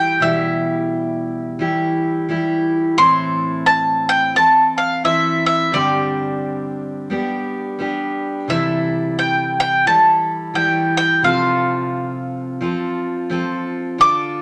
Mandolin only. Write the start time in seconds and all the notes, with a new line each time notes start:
Already playing: G5
0.22 E5
2.98 C6
3.66 A5
4.09 G5
4.36 A5
4.78 F5
5.05 E5
5.46 E5
5.74 D5
8.50 E5
9.19 G5
9.60 G5
9.87 A5
10.55 G5
10.97 G5
11.24 F5
14.01 D6